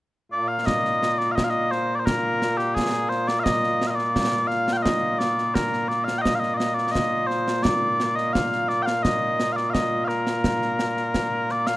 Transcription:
0.32 bagpipes A#2 A#3 F4 D5
0.48 bagpipes F5
0.66 bagpipes D#5, concert bass drum, snare
0.85 snare
1.03 snare
1.18 bagpipes D5, snare
1.32 bagpipes D#5 F5
1.38 concert bass drum, snare
1.44 bagpipes F5
1.50 bagpipes D#5
1.71 bagpipes C5, snare
1.95 bagpipes D5
1.99 bagpipes C5
2.06 bagpipes A#4, concert bass drum, snare
2.42 snare
2.57 bagpipes G4, snare
2.75 bagpipes G#4, concert bass drum, snare
2.94 snare
3.09 bagpipes C5, snare
3.28 bagpipes D5, snare
3.40 bagpipes F5
3.44 bagpipes D#5, concert bass drum, snare
3.64 snare
3.81 snare
3.87 bagpipes D#5 F5
3.95 bagpipes D5, snare
4.16 concert bass drum, snare
4.47 bagpipes F5, snare
4.68 snare
4.73 bagpipes G5
4.77 bagpipes F5
4.82 bagpipes D#5, concert bass drum, snare
5.19 bagpipes D5, snare
5.38 snare
5.54 bagpipes A#4, concert bass drum, snare
5.73 snare
5.88 bagpipes D5, snare
6.04 bagpipes F5, snare
6.18 bagpipes D#5 G5
6.25 concert bass drum, snare
6.35 bagpipes F5
6.40 bagpipes D#5, snare
6.54 bagpipes D5 D#5
6.60 snare
6.74 bagpipes D5
6.78 snare
6.91 bagpipes D#5, concert bass drum, snare
7.27 bagpipes C5, snare
7.48 snare
7.63 bagpipes D5, concert bass drum, snare
8.00 snare
8.15 bagpipes D#5, snare
8.33 bagpipes F5, concert bass drum, snare
8.53 snare
8.69 bagpipes D5, snare
8.82 bagpipes F5 G5
8.87 snare
9.03 bagpipes D#5, concert bass drum, snare
9.40 snare
9.52 bagpipes D5 F5
9.57 snare
9.70 bagpipes D#5 F5
9.75 concert bass drum, snare
10.05 bagpipes A#4 F5
10.09 snare
10.27 snare
10.44 concert bass drum, snare
10.62 snare
10.79 snare
10.97 snare
11.14 concert bass drum, snare
11.49 bagpipes D5, snare
11.67 bagpipes F5, snare

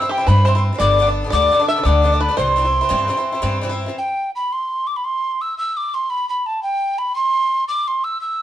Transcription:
Already playing: tin whistle E6
0.02 bouzouki E3 C4 E4
0.09 five-string banjo G4, tin whistle G5
0.18 bouzouki E3 C4 E4
0.27 bouzouki G2 E3 C4 E4, upright bass G2, five-string banjo B4, tin whistle B5
0.45 bouzouki G2 E3 C4 E4, five-string banjo C5, tin whistle C6
0.55 bouzouki E3 C4 E4
0.73 bouzouki E3 C4 E4
0.78 upright bass G1, bouzouki G2 D3 B3 D4, five-string banjo D5, tin whistle D6
0.99 bouzouki G2 D3 B3 D4
1.07 bouzouki D3 B3 D4
1.24 bouzouki D3 B3 D4
1.30 upright bass D2, bouzouki G2 D3 B3, five-string banjo D5, tin whistle D6
1.35 bouzouki D4
1.52 bouzouki G2 D3 B3 D4
1.60 bouzouki D3 B3 D4
1.68 five-string banjo E5, tin whistle E6
1.76 bouzouki D3 B3 D4
1.83 upright bass D2, bouzouki G2 D3 B3 D4, five-string banjo D5, tin whistle D6
2.02 bouzouki G2 D3 B3 D4
2.12 bouzouki D3 B3 D4
2.21 five-string banjo B4, tin whistle B5
2.29 bouzouki D3 B3 D4
2.37 upright bass C2, bouzouki G2 E3 C4 E4, five-string banjo C5, tin whistle C6
2.56 bouzouki G2 E3 C4 E4
2.65 bouzouki E3 C4 E4
2.81 bouzouki E3 C4 E4
2.89 bouzouki G2 E3 C4 E4, upright bass G2
3.08 bouzouki G2 E3 C4 E4
3.17 bouzouki E3 C4 E4
3.32 bouzouki E3 C4 E4
3.42 bouzouki G2 E3 C4 E4, upright bass G2
3.62 bouzouki G2 E3 C4 E4
3.69 bouzouki E3 C4 E4
3.86 bouzouki E3 C4 E4
3.98 tin whistle G5
4.36 tin whistle B5
4.53 tin whistle C6
4.87 tin whistle D6
4.96 tin whistle B5
5.05 tin whistle C6
5.41 tin whistle E6
5.58 tin whistle E6
5.77 tin whistle D6
5.94 tin whistle C6
6.10 tin whistle B5
6.29 tin whistle B5
6.46 tin whistle A5
6.63 tin whistle G5
6.98 tin whistle B5
7.16 tin whistle C6
7.68 tin whistle D6
7.88 tin whistle C6
8.04 tin whistle E6
8.21 tin whistle E6

